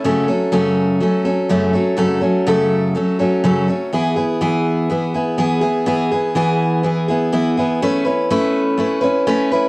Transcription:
\new Staff \with { instrumentName = "Steel-string acoustic guitar" } { \time 4/4 \key a \major \tempo 4 = 124 <fis, cis fis a cis' a'>8 <fis a cis' a'>8 <fis, cis fis a cis' a'>4 <fis a cis' a'>8 <fis a cis' a'>8 <fis, cis fis a cis' a'>8 <fis a cis' a'>8 | <fis, cis fis a cis' a'>8 <fis a cis' a'>8 <fis, cis fis a cis' a'>4 <fis a cis' a'>8 <fis a cis' a'>8 <fis, cis fis a cis' a'>8 <fis a cis' a'>8 | <e b e' gis'>8 <b e' gis'>8 <e b e' gis'>4 <e b e' gis'>8 <b e' gis'>8 <e b e' gis'>8 <b e' gis'>8 | <e b e' gis'>8 <b e' gis'>8 <e b e' gis'>4 <e b e' gis'>8 <b e' gis'>8 <e b e' gis'>8 <b e' gis'>8 |
<a cis' e' b'>8 <cis' e' b'>8 <a cis' e' b'>4 <a cis' e' b'>8 <cis' e' b'>8 <a cis' e' b'>8 <cis' e' b'>8 | }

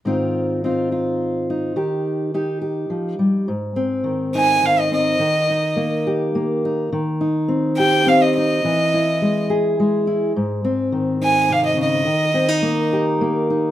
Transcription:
<<
  \new Staff \with { instrumentName = "Violin" } { \time 3/4 \key aes \major \tempo 4 = 105 r2. | r2. | r4. aes''8 f''16 ees''16 ees''8~ | ees''4. r4. |
r4. g''8 f''16 ees''16 ees''8~ | ees''4. r4. | r4. aes''8 f''16 ees''16 ees''8~ | ees''4. r4. | }
  \new Staff \with { instrumentName = "Steel-string acoustic guitar" } { \time 3/4 \key aes \major << { <ees c' ees' f'>4 <c' ees' f'>8 f'4 ees'8 | g'4 <ees' g'>8 g'4. | r8 c'4 ees'4 c'8 | r8 ees'4 g'4 ees'8 |
r8 ees'4 g'4 ees'8 | r8 e'4 gis'4 e'8 | r8 c'4 ees'4. | r8 c'16 ees'8. g'4 ees'8 | } \\ { aes,2. | ees2 f8 g8 | aes,4 ees4 ees4 | ees4 bes4 bes4 |
ees4 c'4 c'4 | e4 gis4 gis4 | aes,4 ees4 c8 des8 | ees4 bes4 bes4 | } >> }
>>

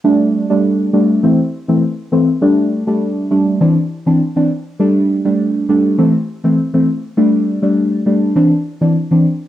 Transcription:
\new Staff \with { instrumentName = "Synth stab" } { \time 4/4 \key a \dorian \tempo 4 = 101 <g a d'>8. <g a d'>8. <g a d'>8 <e a c'>16 r8 <e a c'>16 r8 <e a c'>16 r16 | <g a d'>8. <g a d'>8. <g a d'>8 <e c' d'>16 r8 <e c' d'>16 r16 <e c' d'>16 r8 | <g a d'>8. <g a d'>8. <g a d'>8 <e a c'>16 r8 <e a c'>16 r16 <e a c'>16 r8 | <g a d'>8. <g a d'>8. <g a d'>8 <e c' d'>16 r8 <e c' d'>16 r16 <e c' d'>16 r8 | }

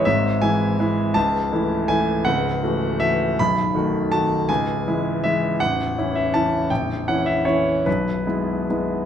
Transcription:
<<
  \new Staff \with { instrumentName = "Grand piano" } { \time 3/4 \key cis \minor \tempo 4 = 162 e''4 gis''4 r4 | \key a \lydian a''2 gis''4 | fis''2 e''4 | b''2 a''4 |
gis''2 e''4 | fis''4. e''8 a''4 | g''4 fis''8 e''8 cis''4 | b'2. | }
  \new Staff \with { instrumentName = "Grand piano" } { \clef bass \time 3/4 \key cis \minor <gis,, gis,>4 <e gis e'>4 <e gis e'>4 | \key a \lydian <cis,, cis,>4 <e a e'>4 <e a e'>4 | <cis,, cis,>4 <e a fis'>4 <e a fis'>4 | <b,,, b,,>4 <dis a fis'>4 <dis a fis'>4 |
<cis,, cis,>4 <e gis e'>4 <e gis e'>4 | <a,,, a,,>4 <e cis' e'>4 <e cis' e'>4 | <ais,,, ais,,>4 <e cis' e'>4 <e cis' e'>4 | <b,,, b,,>4 <gis b e'>4 <gis b e'>4 | }
>>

